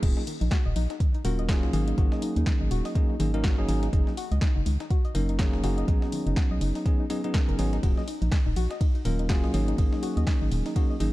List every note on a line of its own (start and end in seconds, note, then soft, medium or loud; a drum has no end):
0.03 0.14 D#1 loud
0.03 0.21 F#3 medium
0.03 0.21 A#3 medium
0.03 0.21 C#4 medium
0.03 0.11 D#4 medium
0.03 0.21 F4 medium
0.03 0.21 G#4 medium
0.03 kick loud
0.03 closed hi-hat medium
0.03 crash loud
0.17 0.22 D#4 medium
0.17 snare soft
0.27 0.35 D#3 medium
0.27 closed hi-hat medium
0.27 open hi-hat loud
0.41 0.50 A#1 loud
0.41 0.45 D#4 medium
0.41 closed hi-hat medium
0.41 closed hi-hat soft
0.51 0.59 F#4 loud
0.51 kick loud
0.51 snare loud
0.51 closed hi-hat medium
0.66 0.74 D#1 medium
0.66 0.69 D#5 medium
0.76 0.87 A#1 medium
0.76 0.84 D#4 medium
0.76 closed hi-hat medium
0.76 open hi-hat loud
0.90 0.96 D#4 medium
0.90 snare soft
0.90 closed hi-hat medium
1.00 1.08 D#3 medium
1.00 kick loud
1.00 closed hi-hat medium
1.14 1.18 D#4 medium
1.14 closed hi-hat soft
1.25 1.65 D#1 medium
1.25 1.47 F#3 medium
1.25 1.47 A#3 medium
1.25 1.47 C#4 medium
1.25 1.47 F4 medium
1.25 1.32 F#4 loud
1.25 1.47 A#4 medium
1.25 closed hi-hat medium
1.25 open hi-hat loud
1.39 1.42 D#5 medium
1.39 closed hi-hat medium
1.49 1.71 F#3 loud
1.49 1.71 A#3 medium
1.49 1.71 C#4 medium
1.49 1.57 D#4 medium
1.49 1.71 F4 medium
1.49 1.71 G#4 loud
1.49 kick loud
1.49 snare loud
1.49 closed hi-hat medium
1.49 open hi-hat medium
1.63 1.72 C#2 loud
1.63 1.69 D#4 medium
1.63 snare medium
1.73 1.94 G#1 loud
1.73 1.81 D#3 medium
1.73 1.95 F#3 medium
1.73 1.95 A#3 medium
1.73 1.95 C#4 medium
1.73 1.95 D#4 medium
1.73 1.95 G#4 medium
1.73 closed hi-hat medium
1.73 open hi-hat loud
1.88 1.91 D#4 medium
1.88 closed hi-hat medium
1.98 2.09 G#1 loud
1.98 2.93 F#3 medium
1.98 2.93 A#3 medium
1.98 2.93 C#4 medium
1.98 2.93 D#4 medium
1.98 2.06 F#4 loud
1.98 2.93 G#4 medium
1.98 kick loud
1.98 closed hi-hat medium
2.12 2.15 D#5 medium
2.12 snare medium
2.22 2.30 D#4 medium
2.22 closed hi-hat medium
2.22 open hi-hat loud
2.36 2.45 D#2 loud
2.36 2.42 D#4 medium
2.36 closed hi-hat soft
2.36 closed hi-hat medium
2.46 2.54 D#3 medium
2.46 kick loud
2.46 snare loud
2.46 closed hi-hat medium
2.61 2.69 G#1 medium
2.61 2.64 D#4 medium
2.71 2.83 D#1 medium
2.71 2.79 F#4 loud
2.71 closed hi-hat medium
2.71 open hi-hat loud
2.85 2.89 D#5 medium
2.85 snare soft
2.85 open hi-hat medium
2.95 3.14 F#3 medium
2.95 3.14 A#3 medium
2.95 3.14 C#4 medium
2.95 3.03 D#4 medium
2.95 3.14 D#4 medium
2.95 3.14 G#4 medium
2.95 kick loud
2.95 closed hi-hat medium
3.10 3.15 D#4 medium
3.20 3.60 G#1 medium
3.20 3.28 D#3 medium
3.20 3.31 F#3 medium
3.20 3.31 A#3 medium
3.20 3.31 C#4 medium
3.20 3.31 D#4 medium
3.20 3.31 G#4 medium
3.20 closed hi-hat medium
3.20 open hi-hat loud
3.34 3.55 F#3 medium
3.34 3.55 A#3 medium
3.34 3.55 C#4 medium
3.34 3.37 D#4 medium
3.34 3.55 D#4 medium
3.34 3.55 A#4 loud
3.34 closed hi-hat medium
3.44 3.52 F#4 loud
3.44 kick loud
3.44 snare loud
3.44 closed hi-hat medium
3.58 3.67 F#1 loud
3.58 3.67 F#3 loud
3.58 3.67 A#3 medium
3.58 3.67 C#4 medium
3.58 3.67 D#4 medium
3.58 3.67 G#4 loud
3.58 3.62 D#5 medium
3.68 3.89 G#1 loud
3.68 3.87 F#3 medium
3.68 3.87 A#3 medium
3.68 3.87 C#4 medium
3.68 3.76 D#4 medium
3.68 3.87 D#4 medium
3.68 3.87 G#4 medium
3.68 closed hi-hat medium
3.68 open hi-hat loud
3.83 3.88 D#4 medium
3.83 snare soft
3.83 closed hi-hat medium
3.93 4.04 F#1 loud
3.93 4.01 D#3 medium
3.93 4.11 F#3 medium
3.93 4.11 A#3 medium
3.93 4.11 C#4 medium
3.93 4.11 D#4 medium
3.93 4.11 G#4 medium
3.93 kick loud
3.93 closed hi-hat medium
4.07 4.10 D#4 medium
4.07 snare soft
4.17 4.25 F#4 loud
4.17 closed hi-hat medium
4.17 open hi-hat loud
4.31 4.40 C#2 loud
4.31 4.35 D#5 medium
4.31 closed hi-hat soft
4.31 closed hi-hat medium
4.41 4.49 D#4 medium
4.41 kick loud
4.41 snare loud
4.41 closed hi-hat medium
4.56 4.64 F#1 medium
4.56 4.61 D#4 medium
4.66 4.78 C#2 medium
4.66 4.74 D#3 medium
4.66 closed hi-hat medium
4.66 open hi-hat loud
4.80 4.84 D#4 medium
4.80 snare medium
4.80 closed hi-hat soft
4.90 4.98 F#4 loud
4.90 kick loud
4.90 closed hi-hat medium
5.05 5.08 D#5 medium
5.05 closed hi-hat soft
5.15 5.55 F#1 medium
5.15 5.37 F#3 medium
5.15 5.37 A#3 medium
5.15 5.37 C#4 medium
5.15 5.23 D#4 medium
5.15 5.37 D#4 medium
5.15 5.37 A#4 medium
5.15 closed hi-hat medium
5.15 open hi-hat loud
5.29 5.35 D#4 medium
5.29 closed hi-hat medium
5.39 5.47 D#3 medium
5.39 5.61 F#3 loud
5.39 5.61 A#3 medium
5.39 5.61 C#4 medium
5.39 5.61 D#4 medium
5.39 5.61 G#4 loud
5.39 kick loud
5.39 snare loud
5.39 closed hi-hat medium
5.39 open hi-hat medium
5.53 5.62 D#1 medium
5.53 5.57 D#4 medium
5.53 snare medium
5.64 5.84 F#1 loud
5.64 5.86 F#3 medium
5.64 5.86 A#3 medium
5.64 5.86 C#4 medium
5.64 5.86 D#4 medium
5.64 5.71 F#4 loud
5.64 5.86 G#4 medium
5.64 closed hi-hat medium
5.64 open hi-hat loud
5.78 5.81 D#5 medium
5.78 closed hi-hat medium
5.88 6.00 B1 loud
5.88 6.83 F#3 medium
5.88 6.83 B3 medium
5.88 6.83 C#4 medium
5.88 5.96 D#4 medium
5.88 6.83 D#4 medium
5.88 6.83 G#4 medium
5.88 kick loud
5.88 closed hi-hat medium
6.02 6.08 D#4 medium
6.02 snare medium
6.12 6.20 D#3 medium
6.12 closed hi-hat medium
6.12 open hi-hat loud
6.27 6.35 F#1 loud
6.27 6.30 D#4 medium
6.27 closed hi-hat medium
6.36 6.45 F#4 loud
6.36 kick loud
6.36 snare loud
6.36 closed hi-hat medium
6.51 6.59 B1 medium
6.51 6.54 D#5 medium
6.61 6.73 F#1 medium
6.61 6.69 D#4 medium
6.61 closed hi-hat medium
6.61 open hi-hat loud
6.75 6.81 D#4 medium
6.75 snare soft
6.75 open hi-hat medium
6.86 6.93 D#3 medium
6.86 7.04 F#3 medium
6.86 7.04 B3 medium
6.86 7.04 C#4 medium
6.86 7.04 D#4 medium
6.86 7.04 G#4 medium
6.86 kick loud
6.86 closed hi-hat medium
7.00 7.03 D#4 medium
7.10 7.21 F#3 medium
7.10 7.21 B3 medium
7.10 7.21 C#4 medium
7.10 7.18 D#4 medium
7.10 7.21 D#4 medium
7.10 7.21 G#4 medium
7.10 closed hi-hat medium
7.10 open hi-hat loud
7.24 7.56 F#3 medium
7.24 7.56 B3 medium
7.24 7.56 C#4 medium
7.24 7.28 D#4 medium
7.24 7.56 D#4 medium
7.24 7.56 G#4 medium
7.24 closed hi-hat medium
7.34 7.42 A#4 medium
7.34 kick loud
7.34 snare loud
7.34 closed hi-hat medium
7.49 7.57 F#1 medium
7.49 7.54 A#4 loud
7.49 closed hi-hat soft
7.59 7.79 G#1 medium
7.59 7.77 F#3 medium
7.59 7.77 B3 medium
7.59 7.77 C#4 medium
7.59 7.63 D#4 medium
7.59 7.77 D#4 medium
7.59 7.77 G#4 medium
7.59 closed hi-hat medium
7.59 open hi-hat loud
7.73 7.79 D#4 loud
7.73 snare soft
7.73 closed hi-hat medium
7.83 7.95 D#1 loud
7.83 8.01 F#3 medium
7.83 8.01 A#3 medium
7.83 8.01 C#4 medium
7.83 8.01 F4 medium
7.83 7.91 F#4 loud
7.83 8.01 G#4 medium
7.83 kick loud
7.83 closed hi-hat medium
7.83 ride medium
7.97 8.01 D#5 medium
7.97 snare soft
8.08 8.15 D#4 medium
8.08 closed hi-hat medium
8.08 open hi-hat loud
8.22 8.30 A#1 loud
8.22 8.27 D#4 medium
8.22 closed hi-hat soft
8.22 closed hi-hat medium
8.32 8.40 D#3 medium
8.32 kick loud
8.32 snare loud
8.32 closed hi-hat medium
8.32 ride medium
8.46 8.54 D#1 medium
8.46 8.50 D#4 medium
8.56 8.68 A#1 medium
8.56 8.64 F#4 loud
8.56 closed hi-hat medium
8.56 open hi-hat loud
8.71 8.74 D#5 medium
8.71 snare medium
8.71 closed hi-hat soft
8.81 8.89 D#4 medium
8.81 kick loud
8.81 closed hi-hat medium
8.81 ride medium
8.95 9.01 D#4 medium
8.95 closed hi-hat soft
9.05 9.45 D#1 medium
9.05 9.13 D#3 medium
9.05 9.27 F#3 medium
9.05 9.27 A#3 medium
9.05 9.27 C#4 medium
9.05 9.27 F4 medium
9.05 9.27 A#4 medium
9.05 closed hi-hat medium
9.05 open hi-hat loud
9.19 9.23 D#4 medium
9.19 closed hi-hat medium
9.29 9.51 F#3 loud
9.29 9.51 A#3 medium
9.29 9.51 C#4 medium
9.29 9.51 F4 medium
9.29 9.37 F#4 loud
9.29 9.51 G#4 loud
9.29 kick loud
9.29 snare loud
9.29 closed hi-hat medium
9.29 open hi-hat medium
9.29 ride medium
9.44 9.52 C#2 loud
9.44 9.47 D#5 medium
9.44 snare soft
9.54 9.75 G#1 loud
9.54 9.76 F#3 medium
9.54 9.76 A#3 medium
9.54 9.76 C#4 medium
9.54 9.62 D#4 medium
9.54 9.76 D#4 medium
9.54 9.76 G#4 medium
9.54 closed hi-hat medium
9.54 open hi-hat loud
9.68 9.74 D#4 medium
9.68 closed hi-hat medium
9.78 9.90 G#1 loud
9.78 9.86 D#3 medium
9.78 10.73 F#3 medium
9.78 10.73 A#3 medium
9.78 10.73 C#4 medium
9.78 10.73 D#4 medium
9.78 10.73 G#4 medium
9.78 kick loud
9.78 closed hi-hat medium
9.78 ride medium
9.93 9.96 D#4 medium
9.93 snare medium
10.03 10.11 F#4 loud
10.03 closed hi-hat medium
10.03 open hi-hat loud
10.17 10.25 D#2 loud
10.17 10.20 D#5 medium
10.17 closed hi-hat soft
10.17 closed hi-hat medium
10.27 10.35 D#4 medium
10.27 kick loud
10.27 snare loud
10.27 closed hi-hat medium
10.27 ride medium
10.41 10.50 G#1 medium
10.41 10.47 D#4 medium
10.51 10.63 D#1 medium
10.51 10.59 D#3 medium
10.51 closed hi-hat medium
10.51 open hi-hat loud
10.66 10.69 D#4 medium
10.66 snare soft
10.66 open hi-hat medium
10.76 10.94 F#3 medium
10.76 10.94 A#3 medium
10.76 10.94 C#4 medium
10.76 10.94 D#4 medium
10.76 10.84 F#4 loud
10.76 10.94 G#4 medium
10.76 kick loud
10.76 closed hi-hat medium
10.76 ride medium
10.90 10.93 D#5 medium
11.00 11.13 G#1 medium
11.00 11.11 F#3 medium
11.00 11.11 A#3 medium
11.00 11.11 C#4 medium
11.00 11.11 D#4 medium
11.00 11.08 D#4 medium
11.00 11.11 G#4 medium
11.00 closed hi-hat medium
11.00 open hi-hat loud